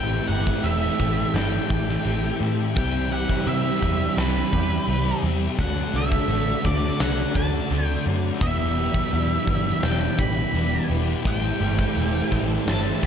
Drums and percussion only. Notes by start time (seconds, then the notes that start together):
0.47 kick
0.65 open hi-hat
1.00 kick
1.35 snare, open hi-hat
1.70 kick
1.89 snare
2.06 open hi-hat
2.77 kick, open hi-hat
3.29 kick
3.48 open hi-hat
3.82 kick
4.18 snare, open hi-hat
4.53 kick
4.88 open hi-hat
5.58 kick, open hi-hat
6.12 kick
6.29 open hi-hat
6.65 kick
7.00 snare, open hi-hat
7.35 kick
7.70 open hi-hat
8.41 kick, open hi-hat
8.94 kick
9.12 open hi-hat
9.47 kick
9.83 snare, open hi-hat
10.19 kick
10.55 open hi-hat
11.25 kick, open hi-hat
11.79 kick
11.97 open hi-hat
12.32 kick
12.67 snare, open hi-hat
13.03 kick